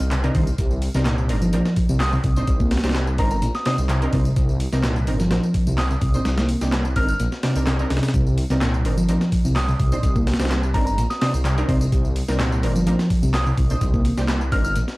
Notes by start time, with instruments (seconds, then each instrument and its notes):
0.00 detuned saw bass C2
0.11 reed electric piano C3, clap, closed hi-hat, tambourine
0.24 reed electric piano C3, synth stab C4 D4 D#4 A#4, closed hi-hat, tambourine
0.35 detuned saw bass C2, reed electric piano D#3, synth stab C4 D4 D#4 C5, kick, closed hi-hat, open hi-hat
0.47 tambourine
0.58 detuned saw bass C2, kick, closed hi-hat, tambourine
0.71 tambourine
0.82 closed hi-hat, open hi-hat
0.94 detuned saw bass C2, reed electric piano C3, synth stab C4 D4 D#4 A#4, snare, tambourine
1.05 reed electric piano A#2, snare, clap, closed hi-hat, tambourine
1.18 tambourine
1.29 detuned saw bass G1, synth stab C4 D4 D#4 A#4, closed hi-hat, open hi-hat
1.42 reed electric piano F3, tambourine
1.53 detuned saw bass A#1, reed electric piano F3, synth stab C4 D4 D#4 A#4, closed hi-hat, tambourine
1.65 snare, tambourine
1.76 kick, closed hi-hat, open hi-hat
1.89 detuned saw bass C2, reed electric piano C3, tambourine
2.00 synth bell D#6, snare, clap, open hi-hat, tambourine
2.13 reed electric piano C3, tambourine
2.24 detuned saw bass C2, reed electric piano C3, kick, closed hi-hat, open hi-hat
2.36 reed electric piano A#2, synth stab C4 D4 D#4 C5, tambourine
2.47 detuned saw bass C2, kick, closed hi-hat, tambourine
2.60 reed electric piano A#3, kick, tambourine
2.71 snare, closed hi-hat, open hi-hat
2.77 snare, closed hi-hat
2.84 detuned saw bass C2, synth stab C4 D4 D#4 G4, snare, closed hi-hat, tambourine
2.89 snare, closed hi-hat
2.95 snare, clap, closed hi-hat, tambourine
3.07 tambourine
3.18 detuned saw bass G1, synth stab C4 D4 D#4 A#4, synth bell A#5, kick, closed hi-hat, open hi-hat
3.31 synth bell A#5, tambourine
3.42 detuned saw bass A#1, reed electric piano A#2, closed hi-hat, tambourine
3.54 synth bell D#6, snare, tambourine
3.65 reed electric piano C3, synth stab C4 D4 D#4 C5, synth bell D#6, snare, closed hi-hat, open hi-hat
3.78 detuned saw bass C2, tambourine
3.89 reed electric piano C3, clap, closed hi-hat, tambourine
4.02 synth stab C4 D4 D#4 A#4, closed hi-hat, tambourine
4.13 detuned saw bass C2, reed electric piano C3, synth stab C4 D4 D#4 C5, kick, closed hi-hat, open hi-hat
4.25 tambourine
4.36 detuned saw bass C2, kick, closed hi-hat, tambourine
4.49 tambourine
4.60 closed hi-hat, open hi-hat
4.72 detuned saw bass C2, reed electric piano C3, synth stab C4 D4 D#4 A#4, snare, tambourine
4.84 reed electric piano A#2, snare, clap, closed hi-hat, tambourine
4.96 tambourine
5.07 detuned saw bass G1, synth stab C4 D4 D#4 A#4, closed hi-hat, open hi-hat
5.20 reed electric piano F3, snare, tambourine
5.31 detuned saw bass A#1, reed electric piano F3, synth stab C4 D4 D#4 A#4, snare, closed hi-hat, tambourine
5.43 tambourine
5.54 kick, closed hi-hat, open hi-hat
5.67 detuned saw bass C2, reed electric piano C3, tambourine
5.78 synth bell D#6, snare, clap, open hi-hat, tambourine
5.90 reed electric piano C3, tambourine
6.01 detuned saw bass C2, reed electric piano C3, kick, closed hi-hat, open hi-hat
6.14 reed electric piano A#2, synth stab C4 D4 D#4 C5, tambourine
6.25 detuned saw bass C2, snare, closed hi-hat, tambourine
6.38 reed electric piano A#3, snare, closed hi-hat, tambourine
6.49 closed hi-hat, open hi-hat
6.61 detuned saw bass C2, synth stab C4 D4 D#4 G4, snare, tambourine
6.72 snare, clap, closed hi-hat, tambourine
6.85 tambourine
6.96 detuned saw bass G1, synth stab C4 D4 D#4 A#4, synth bell F6, kick, closed hi-hat, open hi-hat
7.08 synth bell F6, tambourine
7.19 detuned saw bass A#1, reed electric piano A#2, closed hi-hat, tambourine
7.32 snare, tambourine
7.43 reed electric piano C3, synth stab C4 D4 D#4 D5, snare, closed hi-hat, open hi-hat
7.55 detuned saw bass C2, synth stab C4 D4 D#4 A#4, tambourine
7.67 reed electric piano C3, snare, clap, closed hi-hat, tambourine
7.79 synth stab C4 D4 D#4 A#4, tambourine
7.90 detuned saw bass C2, reed electric piano C3, snare, closed hi-hat, open hi-hat
7.97 snare, closed hi-hat
8.03 snare, closed hi-hat, tambourine
8.08 snare, closed hi-hat
8.14 detuned saw bass C2, kick, closed hi-hat, tambourine
8.27 tambourine
8.38 closed hi-hat, open hi-hat
8.50 detuned saw bass C2, reed electric piano C3, synth stab C4 D4 D#4 A#4, snare, tambourine
8.61 reed electric piano A#2, snare, clap, closed hi-hat, tambourine
8.74 tambourine
8.85 detuned saw bass G1, synth stab C4 D4 D#4 A#4, closed hi-hat, open hi-hat
8.97 reed electric piano F3, tambourine
9.08 detuned saw bass A#1, reed electric piano F3, synth stab C4 D4 D#4 A#4, closed hi-hat, tambourine
9.21 snare, tambourine
9.32 kick, closed hi-hat, open hi-hat
9.45 detuned saw bass C2, reed electric piano C3, tambourine
9.56 synth bell D#6, snare, clap, open hi-hat, tambourine
9.68 reed electric piano C3, tambourine
9.79 detuned saw bass C2, reed electric piano C3, kick, closed hi-hat, open hi-hat
9.92 reed electric piano A#2, synth stab C4 D4 D#4 C5, tambourine
10.03 detuned saw bass C2, kick, closed hi-hat, tambourine
10.15 reed electric piano A#3, kick, tambourine
10.27 snare, closed hi-hat, open hi-hat
10.33 snare, closed hi-hat
10.39 detuned saw bass C2, synth stab C4 D4 D#4 G4, snare, closed hi-hat, tambourine
10.45 snare, closed hi-hat
10.50 snare, clap, closed hi-hat, tambourine
10.63 tambourine
10.74 detuned saw bass G1, synth stab C4 D4 D#4 A#4, synth bell A#5, kick, closed hi-hat, open hi-hat
10.86 synth bell A#5, tambourine
10.98 detuned saw bass A#1, reed electric piano A#2, closed hi-hat, tambourine
11.10 synth bell D#6, snare, tambourine
11.21 reed electric piano C3, synth stab C4 D4 D#4 C5, synth bell D#6, snare, closed hi-hat, open hi-hat
11.34 detuned saw bass C2, tambourine
11.45 reed electric piano C3, clap, closed hi-hat, tambourine
11.58 synth stab C4 D4 D#4 A#4, closed hi-hat, tambourine
11.69 detuned saw bass C2, reed electric piano C3, synth stab C4 D4 D#4 C5, kick, closed hi-hat, open hi-hat
11.81 tambourine
11.92 detuned saw bass C2, kick, closed hi-hat, tambourine
12.05 tambourine
12.16 closed hi-hat, open hi-hat
12.28 detuned saw bass C2, reed electric piano C3, synth stab C4 D4 D#4 A#4, snare, tambourine
12.39 reed electric piano A#2, snare, clap, closed hi-hat, tambourine
12.52 tambourine
12.63 detuned saw bass G1, synth stab C4 D4 D#4 A#4, closed hi-hat, open hi-hat
12.76 reed electric piano F3, tambourine
12.87 detuned saw bass A#1, reed electric piano F3, synth stab C4 D4 D#4 A#4, closed hi-hat, tambourine
12.99 snare, tambourine
13.10 kick, closed hi-hat, open hi-hat
13.23 detuned saw bass C2, reed electric piano C3, tambourine
13.34 synth bell D#6, snare, clap, open hi-hat, tambourine
13.46 reed electric piano C3, tambourine
13.57 detuned saw bass C2, reed electric piano C3, kick, closed hi-hat, open hi-hat
13.70 reed electric piano A#2, synth stab C4 D4 D#4 C5, tambourine
13.81 detuned saw bass C2, kick, closed hi-hat, tambourine
13.94 reed electric piano A#3, kick, tambourine
14.05 closed hi-hat, open hi-hat
14.17 detuned saw bass C2, synth stab C4 D4 D#4 G4, snare, tambourine
14.28 snare, clap, closed hi-hat, tambourine
14.41 tambourine
14.52 detuned saw bass G1, synth stab C4 D4 D#4 A#4, synth bell F6, kick, closed hi-hat, open hi-hat
14.65 synth bell F6, tambourine
14.76 detuned saw bass A#1, reed electric piano A#2, closed hi-hat, tambourine
14.88 snare, tambourine